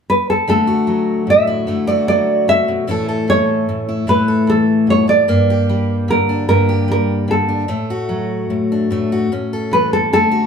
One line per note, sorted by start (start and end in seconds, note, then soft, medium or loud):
0.10 0.27 B4 medium
0.30 0.47 A4 medium
0.48 1.66 D3 medium
0.48 1.67 A3 medium
0.48 1.30 A4 medium
0.67 1.87 F#4 soft
0.87 2.07 F#3 soft
1.27 1.67 A2 soft
1.27 1.87 E5 medium
1.47 2.83 E4 soft
1.67 2.47 D3 medium
1.67 2.88 A3 soft
1.87 2.88 F#4 medium
1.87 2.06 D5 medium
2.08 2.83 F#3 soft
2.08 2.49 D5 medium
2.48 2.68 C#3 soft
2.48 3.29 E5 medium
2.68 2.88 B2 soft
2.87 3.67 A2 medium
2.87 3.26 E3 medium
2.87 4.07 A3 medium
2.87 3.87 E4 medium
2.87 3.07 A4 medium
3.09 4.27 A4 medium
3.28 4.46 E3 soft
3.28 4.09 C#5 medium
3.69 4.06 A2 soft
3.89 5.24 E4 soft
4.07 5.06 A2 medium
4.07 5.28 A3 soft
4.07 4.50 B4 medium
4.28 5.24 A4 medium
4.47 5.28 E3 soft
4.47 4.86 A4 medium
4.87 5.08 B2 soft
4.87 5.09 C#5 medium
5.07 5.28 A2 soft
5.07 6.10 D5 medium
5.28 6.47 G2 medium
5.28 6.48 A#3 medium
5.50 6.68 G4 medium
5.69 6.87 G3 soft
6.08 7.27 D3 medium
6.08 6.48 A#4 medium
6.29 7.47 D4 soft
6.48 7.64 G2 medium
6.48 7.65 A#3 soft
6.48 6.86 A#4 medium
6.69 7.65 G4 soft
6.88 7.64 G3 soft
6.88 7.28 A#4 medium
7.28 7.64 D3 soft
7.28 8.06 A4 medium
7.49 7.64 D4 soft
7.68 8.49 A2 medium
7.68 8.91 A3 medium
7.90 9.11 F#4 medium
8.09 9.25 F#3 soft
8.50 8.89 A2 soft
8.72 9.27 D4 soft
8.91 9.26 A2 medium
8.91 9.32 A3 soft
9.12 9.31 F#4 medium
9.32 10.07 A2 medium
9.32 10.07 C#4 soft
9.53 10.31 A4 medium
9.71 10.11 E3 soft
9.71 9.93 B4 medium
9.93 10.12 A4 medium
10.13 10.46 D3 medium
10.13 10.46 A3 medium
10.13 10.46 A4 medium
10.31 10.46 F#4 medium